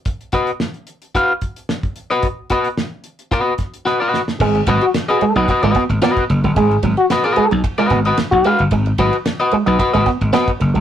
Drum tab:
CC |----------------|----------------|x---------------|----------------|
RD |----------------|----------------|-xxxxxxxxxxxxxxx|xxxxxxxxxxxxxxxx|
HH |xxxx-xxxx-xx-xxx|x-xx--xxx-xx----|----------------|----------------|
SD |----o-------o---|----o-----o-o-oo|----o-----o-o---|----o-----o-o---|
BD |o-o-----o-o--o--|o-o-----o-o-----|o-o-----o-o--o--|o-o-----o-o--o--|

CC |----------------|
RD |xxxxxxxxxxxxxxxx|
HH |----------------|
SD |----o-----o-o---|
BD |o-o-----o-o--o--|